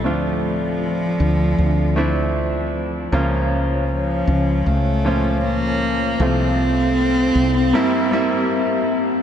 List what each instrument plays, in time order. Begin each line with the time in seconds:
Already playing: french horn section F3 C4 A4
0.04 fretless electric bass D2, grand piano A2 A3 C4 D4 F4, cello F3, french horn section D5
1.20 fretless electric bass D2
1.58 fretless electric bass D2
1.96 grand piano A3 C4 D4 E4
3.12 fretless electric bass C#2, grand piano C#3 F3 A#3 C#4 F4, french horn section C#4 C#5 F5
3.91 cello F3
4.27 fretless electric bass C#2
4.66 fretless electric bass C#2, cello A3
5.05 grand piano A#2 F3 C#4 F4
5.45 cello A#3
6.20 fretless electric bass C2, grand piano C3 F3 A3 C4 F4, french horn section C4 A4 F5, cello C4
7.35 fretless electric bass C2
7.73 grand piano G2 G3 A#3 C4 E4, french horn section G4 A#4 E5
8.11 grand piano G3 A#3 C4 E4